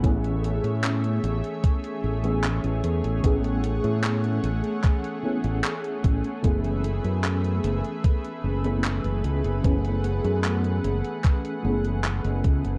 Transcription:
Already playing: A3 G#4
0.02 A1 E3 A3 B3 C#4 G#4 C#5 E5, kick, closed hi-hat
0.24 closed hi-hat
0.44 closed hi-hat
0.64 A2, closed hi-hat
0.84 clap, closed hi-hat
1.04 closed hi-hat
1.24 A1, closed hi-hat
1.44 closed hi-hat
1.64 kick, closed hi-hat
1.84 closed hi-hat
2.04 A1
2.23 E3 A3 B3 C#4 G#4, closed hi-hat
2.44 clap, closed hi-hat
2.64 A1, closed hi-hat
2.84 E2, closed hi-hat
3.04 A1, closed hi-hat
3.22 A1 E3 A3 B3 C#4 G#4 F#5, kick, closed hi-hat
3.44 closed hi-hat
3.64 closed hi-hat
3.84 A2, closed hi-hat
4.04 clap, closed hi-hat
4.24 closed hi-hat
4.44 A1, closed hi-hat
4.64 closed hi-hat
4.84 kick, clap, closed hi-hat
5.04 closed hi-hat
5.22 E3 A3 B3 C#4 G#4
5.44 A1, closed hi-hat
5.64 clap, closed hi-hat
5.84 closed hi-hat
6.04 A1, kick, closed hi-hat
6.24 closed hi-hat
6.42 F#1 E3 A3 B3 C#4 G#4 B4 E5, kick, closed hi-hat
6.64 closed hi-hat
6.84 closed hi-hat
7.04 F#2, closed hi-hat
7.24 clap, closed hi-hat
7.44 closed hi-hat
7.64 F#1, closed hi-hat
7.84 closed hi-hat
8.04 kick, closed hi-hat
8.25 closed hi-hat
8.44 F#1
8.64 E3 A3 B3 C#4 G#4, closed hi-hat
8.84 clap, closed hi-hat
9.04 F#1, closed hi-hat
9.24 C#2, closed hi-hat
9.44 F#1, closed hi-hat
9.63 F#1 E3 A3 B3 C#4 G#4 F#5, kick, closed hi-hat
9.85 closed hi-hat
10.04 closed hi-hat
10.24 F#2, closed hi-hat
10.44 clap, closed hi-hat
10.64 closed hi-hat
10.84 F#1, closed hi-hat
11.04 closed hi-hat
11.24 kick, clap, closed hi-hat
11.45 closed hi-hat
11.62 F#1 E3 A3 B3 C#4 G#4
11.84 closed hi-hat
12.04 clap, closed hi-hat
12.24 F#1, closed hi-hat
12.44 C#2, kick, closed hi-hat
12.65 F#1, closed hi-hat

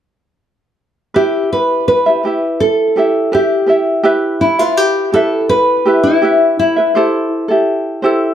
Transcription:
1.14 E4 G4 B4 E5
1.53 B4
1.88 B4
2.06 E4 G4 E5
2.23 E4 G4 B4 E5
2.60 A4
2.96 E4 G4 B4 E5
3.32 E4 G4 B4 E5
3.66 E4 G4 B4 E5
4.04 E4 G4 B4 E5
4.41 E4
4.59 E4 F4 B4 E5
4.77 G4
5.12 E4 G4 A4 B4 E5
5.49 B4
5.86 E4 G4 B4 E5
6.03 E4
6.22 E4 G4 B4 E5
6.59 E4
6.76 E4 B4 E5
6.95 E4 G4 A4 C5
7.48 E4 G4 A4
8.02 E4 G4 A4 C5

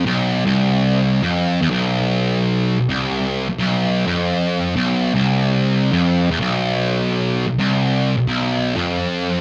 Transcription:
0.06 B1
0.45 C2
1.22 F2
1.61 E2
1.70 B1
2.79 B1
2.89 C2
3.50 B1
3.58 B1
4.07 F2
4.76 B1
5.14 C2
5.92 F2
6.31 E2
6.40 B1
7.47 B1
7.59 C2
8.17 B1
8.27 B1
8.75 F2

